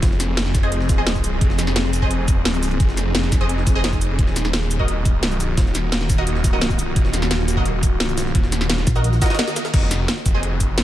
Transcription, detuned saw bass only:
0.03 1.02 F1 loud
1.02 1.24 D#1 loud
1.24 1.40 C#1 loud
1.41 2.40 F1 loud
2.40 2.62 D#1 loud
2.62 2.79 C#1 loud
2.80 4.17 F1 loud
4.19 5.18 D#1 loud
5.18 5.40 C#1 loud
5.40 5.56 B0 loud
5.57 6.95 D#1 loud
6.96 8.34 D#1 loud
8.35 8.86 D#1 loud
9.74 10.07 F1 loud
10.26 10.76 F1 loud
10.78 10.84 F#1 loud

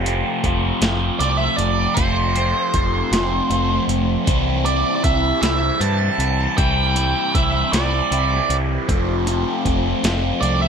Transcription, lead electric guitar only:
1.19 1.37 D5 medium
1.37 1.56 E5 medium
1.56 1.97 D5 medium
1.94 3.83 C5 medium
4.65 4.94 D5 medium
4.95 5.03 D5 medium
5.04 5.40 E5 medium
5.42 5.82 E5 medium
5.80 6.57 A5 medium
6.58 7.37 G5 medium
7.35 7.70 E5 medium
7.73 8.55 D5 medium
10.41 10.61 D5 medium
10.61 10.68 E5 medium

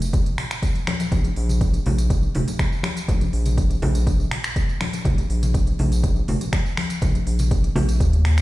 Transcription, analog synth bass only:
0.00 0.32 F1 medium
1.12 1.29 A#1 loud
1.37 1.80 A#1 loud
1.86 2.29 A#1 medium
2.35 2.44 F1 medium
3.08 3.26 A#1 loud
3.33 3.77 A#1 loud
3.82 4.26 A#1 medium
5.05 5.23 A#1 loud
5.30 5.73 A#1 loud
5.79 6.22 A#1 medium
6.28 6.37 F1 medium
7.02 7.19 A#1 loud
7.27 7.70 A#1 loud
7.76 8.00 A#1 medium
8.00 8.41 D#2 medium

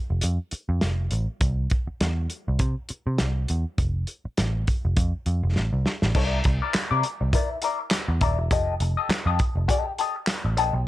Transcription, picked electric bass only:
0.10 0.21 F1 medium
0.24 0.37 F2 medium
0.53 muted picked electric bass stroke soft
0.69 0.80 F2 medium
0.82 1.07 F1 medium
1.12 1.26 A1 medium
1.41 1.66 C2 loud
1.88 muted picked electric bass stroke soft
2.01 2.26 E2 medium
2.48 2.59 C2 medium
2.60 2.74 C3 loud
2.90 muted picked electric bass stroke soft
3.07 3.18 C3 medium
3.20 3.45 C2 medium
3.50 3.64 E2 medium
3.78 4.04 F1 medium
4.25 muted picked electric bass stroke soft
4.39 4.64 A1 medium
4.85 4.96 F1 medium
4.97 5.11 F2 medium
5.26 5.41 F2 loud
5.43 5.54 F1 loud
5.56 5.70 A1 medium
5.73 5.84 C2 medium
6.03 6.14 A1 medium
6.15 6.40 C2 loud
6.45 6.59 C2 loud
6.75 muted picked electric bass stroke medium
6.91 7.02 C3 loud
7.21 7.32 C2 medium
8.08 8.20 E2 loud
8.21 8.38 D#1 loud
8.38 8.51 E1 loud
8.51 8.76 F1 loud
8.80 8.95 F1 medium
9.09 muted picked electric bass stroke medium
9.26 9.37 F2 loud
9.55 9.67 F1 loud
10.45 10.56 A1 loud
10.56 10.71 A#1 loud
10.73 10.87 B1 loud

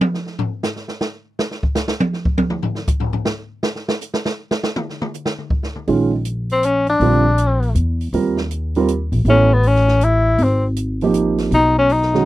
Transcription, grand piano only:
5.87 6.10 D#3 medium
5.87 6.10 G#3 medium
5.87 6.10 C#4 medium
5.87 6.10 F4 medium
7.01 7.23 D3 soft
7.01 7.23 G3 soft
7.01 7.23 C4 soft
7.01 7.23 F4 medium
8.14 8.36 G3 medium
8.14 8.36 C4 soft
8.14 8.36 F4 soft
8.14 8.36 A#4 medium
8.76 8.88 G3 medium
8.76 8.88 C4 medium
8.76 8.88 F4 medium
8.76 8.89 A#4 medium
9.28 9.49 B3 soft
9.28 9.49 E4 soft
9.28 9.50 A4 medium
9.28 9.49 C#5 medium
11.02 11.50 F3 medium
11.02 11.50 A#3 soft
11.02 11.50 D#4 medium
11.02 11.50 G4 medium
12.13 12.25 D#3 medium
12.13 12.25 G#3 medium
12.13 12.25 C#4 medium
12.13 12.25 F#4 medium

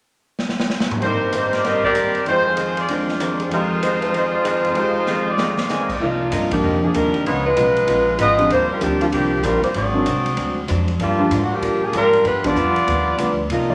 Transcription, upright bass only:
6.00 6.31 C2 medium
6.32 6.62 G2 medium
6.63 6.93 F2 medium
6.95 7.25 D#2 medium
7.26 7.56 C#2 medium
7.57 7.87 B1 medium
7.88 8.18 A#1 medium
8.19 8.49 G#1 medium
8.51 8.69 D#2 medium
8.71 muted upright bass stroke soft
8.81 9.11 D2 medium
9.12 9.42 C2 medium
9.43 9.61 A#1 medium
9.64 muted upright bass stroke soft
9.75 10.05 G#1 medium
10.06 10.36 C2 medium
10.37 10.68 D2 medium
10.70 10.99 F2 medium
10.99 11.30 G2 medium
11.31 11.49 G#2 medium
11.51 muted upright bass stroke soft
11.62 11.92 A#2 medium
11.93 12.23 G#2 medium
12.24 12.55 G2 medium
12.56 12.86 F2 medium
12.87 13.17 D#2 medium
13.18 13.49 D2 medium
13.49 13.75 C2 medium

